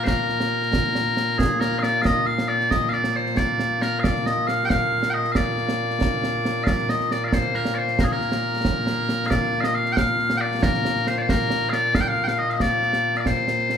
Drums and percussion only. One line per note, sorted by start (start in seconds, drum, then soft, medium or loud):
0.07 concert bass drum medium
0.07 snare medium
0.30 snare soft
0.40 snare medium
0.62 snare soft
0.73 concert bass drum medium
0.73 snare medium
0.95 snare medium
1.17 snare medium
1.39 concert bass drum medium
1.39 snare loud
1.61 snare medium
1.72 snare soft
1.83 snare medium
2.05 concert bass drum medium
2.05 snare medium
2.38 snare medium
2.60 snare soft
2.71 concert bass drum medium
2.71 snare medium
2.93 snare soft
3.04 snare medium
3.26 snare soft
3.37 concert bass drum medium
3.37 snare medium
3.59 snare medium
3.82 snare medium
4.04 concert bass drum medium
4.04 snare medium
4.16 snare soft
4.26 snare medium
4.48 snare medium
4.70 concert bass drum medium
4.70 snare medium
5.03 snare medium
5.25 snare soft
5.35 concert bass drum medium
5.35 snare medium
5.58 snare soft
5.69 snare medium
5.90 snare soft
6.01 concert bass drum medium
6.01 snare loud
6.24 snare medium
6.45 snare medium
6.67 concert bass drum medium
6.67 snare loud
6.78 snare soft
6.89 snare medium
7.00 snare soft
7.11 snare medium
7.32 concert bass drum medium
7.32 snare loud
7.55 snare soft
7.65 snare medium
7.88 snare soft
7.99 concert bass drum medium
7.99 snare loud
8.21 snare soft
8.32 snare medium
8.54 snare soft
8.65 concert bass drum medium
8.65 snare loud
8.87 snare medium
9.09 snare medium
9.31 concert bass drum medium
9.31 snare medium
9.64 snare medium
9.86 snare soft
9.97 concert bass drum medium
9.97 snare loud
10.19 snare soft
10.30 snare medium
10.52 snare soft
10.63 concert bass drum medium
10.63 snare loud
10.74 snare soft
10.85 snare medium
10.96 snare soft
11.07 snare medium
11.29 concert bass drum medium
11.29 snare loud
11.40 snare soft
11.50 snare medium
11.61 snare soft
11.73 snare medium
11.95 concert bass drum medium
11.95 snare loud
12.28 snare medium
12.50 snare soft
12.60 concert bass drum soft
12.60 snare medium
12.82 snare soft
12.93 snare medium
13.15 snare soft
13.26 concert bass drum soft
13.26 snare medium
13.37 snare soft
13.48 snare medium
13.59 snare soft
13.70 snare medium